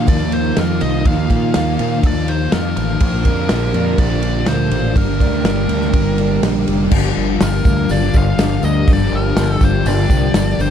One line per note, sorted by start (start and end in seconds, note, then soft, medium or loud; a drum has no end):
0.00 3.00 D#3 medium
0.00 3.01 F3 medium
0.00 0.32 A#3 medium
0.00 3.01 A#3 medium
0.00 2.98 D#4 medium
0.00 3.02 D#4 medium
0.00 2.98 F4 medium
0.00 2.96 A#4 medium
0.00 4.93 F5 medium
0.06 0.51 D#2 medium
0.06 0.55 D#3 medium
0.06 0.56 F3 medium
0.06 0.57 A#3 medium
0.06 0.57 D#4 medium
0.06 0.33 D5 loud
0.06 kick loud
0.06 ride medium
0.32 1.29 A#3 medium
0.32 0.58 C5 medium
0.32 ride medium
0.56 0.79 F2 medium
0.56 1.03 D#3 medium
0.56 0.80 F3 medium
0.56 1.05 A#3 medium
0.56 1.05 D#4 medium
0.56 0.81 A#4 medium
0.56 snare loud
0.56 ride medium
0.81 1.03 C2 medium
0.81 1.05 F3 medium
0.81 1.06 D#5 medium
0.81 ride medium
1.04 1.27 D#2 medium
1.04 1.52 D#3 medium
1.04 1.54 F3 medium
1.04 1.54 A#3 medium
1.04 1.55 D#4 loud
1.04 2.06 F5 loud
1.04 kick loud
1.04 ride medium
1.30 1.52 A#2 medium
1.30 1.79 A#3 medium
1.30 kick medium
1.30 snare soft
1.30 ride medium
1.53 1.77 D#2 medium
1.53 2.02 D#3 medium
1.53 2.02 F3 medium
1.53 1.80 A#3 medium
1.53 1.76 D#4 medium
1.53 snare loud
1.53 ride medium
1.78 2.01 A#2 medium
1.78 2.28 A#3 medium
1.78 2.03 A#3 soft
1.78 2.04 D#4 medium
1.78 ride medium
2.03 2.47 D#2 medium
2.03 2.50 D#3 medium
2.03 2.51 F3 medium
2.03 2.53 A#3 medium
2.03 2.54 D#4 medium
2.03 kick loud
2.03 ride medium
2.07 2.30 D5 loud
2.28 3.25 A#3 medium
2.28 2.53 C5 medium
2.28 ride medium
2.51 2.74 F2 medium
2.51 2.99 D#3 medium
2.51 2.76 F3 medium
2.51 3.03 A#3 medium
2.51 3.01 D#4 medium
2.51 2.76 A#4 medium
2.51 snare loud
2.51 ride medium
2.77 2.99 A1 medium
2.77 3.00 F3 medium
2.77 4.03 A#4 medium
2.77 ride medium
3.00 3.23 A#1 medium
3.00 4.94 A#2 medium
3.00 3.49 A#2 medium
3.00 4.94 D3 medium
3.00 3.49 F3 medium
3.00 4.95 F3 medium
3.00 3.50 F3 medium
3.00 4.96 A#3 medium
3.00 6.89 D4 medium
3.00 4.96 D4 medium
3.00 6.89 G4 medium
3.00 6.89 A#4 medium
3.00 kick loud
3.00 ride medium
3.04 3.52 A#3 loud
3.25 3.47 F2 medium
3.25 4.47 A#3 medium
3.25 kick medium
3.25 ride medium
3.49 3.72 A#1 medium
3.49 3.98 A#2 medium
3.49 3.98 F3 medium
3.49 3.76 F3 medium
3.49 3.73 A#3 medium
3.49 snare loud
3.49 ride medium
3.74 3.96 F2 medium
3.74 4.00 F3 medium
3.74 4.01 A#3 medium
3.74 4.22 D4 medium
3.74 ride medium
3.98 4.42 A#1 medium
3.98 4.46 A#2 medium
3.98 4.70 F3 medium
3.98 4.48 F3 medium
3.98 4.50 A#3 medium
3.98 4.49 D5 loud
3.98 kick loud
3.98 ride medium
4.23 5.20 D4 medium
4.23 ride medium
4.46 4.69 D2 medium
4.46 4.95 A#2 medium
4.46 4.96 F3 medium
4.46 4.95 A#3 medium
4.46 8.00 A#3 medium
4.46 4.97 C5 medium
4.46 snare loud
4.46 ride medium
4.70 4.93 A1 medium
4.70 4.96 F3 medium
4.70 ride medium
4.94 5.18 G1 medium
4.94 6.91 G2 medium
4.94 5.42 G2 medium
4.94 6.92 D3 medium
4.94 5.44 D3 medium
4.94 6.92 G3 medium
4.94 5.45 G3 medium
4.94 5.44 A#3 medium
4.94 6.92 A#3 medium
4.94 6.92 D4 medium
4.94 6.40 A#4 medium
4.94 6.90 G5 medium
4.94 kick loud
4.94 ride medium
5.20 5.43 D2 medium
5.20 5.68 D4 medium
5.20 kick medium
5.20 snare soft
5.20 ride medium
5.44 5.67 G1 medium
5.44 5.91 G2 medium
5.44 5.70 D3 medium
5.44 5.67 G3 medium
5.44 5.93 A#3 medium
5.44 snare loud
5.44 ride medium
5.68 5.91 D2 medium
5.68 5.93 D3 medium
5.68 5.94 G3 medium
5.68 6.18 D4 medium
5.68 ride medium
5.82 snare soft
5.93 6.37 G1 medium
5.93 6.40 G2 medium
5.93 6.43 D3 medium
5.93 6.43 G3 medium
5.93 6.42 A#3 medium
5.93 kick loud
5.93 ride medium
6.18 6.92 D4 medium
6.18 ride medium
6.42 6.64 A#1 medium
6.42 6.90 G2 medium
6.42 6.91 D3 medium
6.42 6.92 G3 medium
6.42 6.66 A#3 medium
6.42 snare loud
6.42 ride medium
6.67 6.89 F1 medium
6.67 6.92 A#3 medium
6.67 ride medium
6.91 7.11 G1 medium
6.91 7.89 G2 loud
6.91 7.67 D3 loud
6.91 7.41 F3 medium
6.91 7.65 G3 loud
6.91 10.70 D4 medium
6.91 10.70 G4 medium
6.91 10.70 A#4 medium
6.91 8.86 F5 medium
6.91 kick loud
6.91 crash loud
7.17 7.36 G1 medium
7.40 7.60 G1 medium
7.40 8.16 F3 medium
7.40 7.93 A#4 medium
7.40 snare loud
7.40 open hi-hat medium
7.40 tambourine medium
7.65 7.84 D2 medium
7.65 7.89 D3 medium
7.65 7.91 G3 medium
7.65 8.63 A#3 medium
7.65 kick medium
7.65 tambourine medium
7.89 8.09 G1 medium
7.89 8.36 G2 medium
7.89 8.15 D3 medium
7.89 8.12 G3 medium
7.89 9.13 D4 medium
7.89 8.16 D5 loud
7.89 open hi-hat medium
7.89 tambourine medium
8.13 8.34 G1 medium
8.13 8.38 D3 medium
8.13 8.40 F3 medium
8.13 8.39 G3 medium
8.13 kick medium
8.13 tambourine medium
8.18 8.64 F5 loud
8.37 8.57 G1 medium
8.37 8.86 G2 medium
8.37 8.63 D3 medium
8.37 8.88 F3 medium
8.37 8.61 G3 medium
8.37 snare loud
8.37 open hi-hat medium
8.37 tambourine medium
8.62 8.82 D2 loud
8.62 8.88 D3 medium
8.62 8.88 G3 medium
8.62 9.61 A#3 medium
8.62 8.89 D#5 loud
8.62 tambourine medium
8.87 9.07 G1 medium
8.87 9.85 G2 medium
8.87 9.62 D3 medium
8.87 9.37 F3 medium
8.87 9.59 G3 loud
8.87 10.70 G5 medium
8.87 kick loud
8.87 open hi-hat medium
8.93 9.16 D5 loud
9.12 9.31 G1 medium
9.12 9.52 A#4 loud
9.36 9.56 G1 medium
9.36 10.10 F3 medium
9.36 snare loud
9.36 open hi-hat medium
9.36 tambourine medium
9.52 9.64 A4 loud
9.60 9.81 G1 loud
9.60 9.86 D3 medium
9.60 9.87 G3 medium
9.60 10.59 A#3 medium
9.60 kick medium
9.60 tambourine medium
9.65 9.88 C5 medium
9.85 10.05 G1 loud
9.85 10.33 G2 medium
9.85 10.10 D3 medium
9.85 10.08 G3 medium
9.85 10.70 D4 medium
9.85 10.62 D5 loud
9.85 open hi-hat medium
9.85 tambourine medium
10.10 10.29 C2 loud
10.10 10.34 D3 medium
10.10 10.34 F3 medium
10.10 10.36 G3 medium
10.10 kick medium
10.10 tambourine medium
10.34 10.53 G1 medium
10.34 10.70 G2 medium
10.34 10.60 D3 medium
10.34 10.70 F3 medium
10.34 10.57 G3 medium
10.34 snare loud
10.34 open hi-hat medium
10.34 tambourine loud
10.58 10.70 G1 medium
10.58 10.70 D3 medium
10.58 10.70 G3 medium
10.58 10.70 A#3 medium
10.58 10.70 C5 medium
10.58 tambourine medium